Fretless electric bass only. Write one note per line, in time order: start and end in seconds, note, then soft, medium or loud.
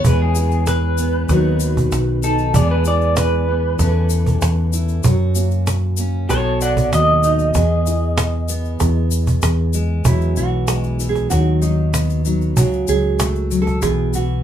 0.04 1.26 E2 medium
1.29 1.88 D#2 medium
1.91 2.51 B1 medium
2.54 3.75 E2 medium
3.79 4.38 E2 medium
4.41 5.01 E2 medium
5.04 6.25 F#2 medium
6.30 6.89 B1 medium
6.93 7.52 D#2 medium
7.56 8.77 E2 medium
8.80 9.40 E2 loud
9.43 10.02 E2 medium
10.05 10.35 E2 medium
10.37 11.27 B1 medium
11.31 12.57 D#2 medium
12.57 12.87 C#2 medium
12.88 13.78 C#2 medium
13.82 14.43 B1 medium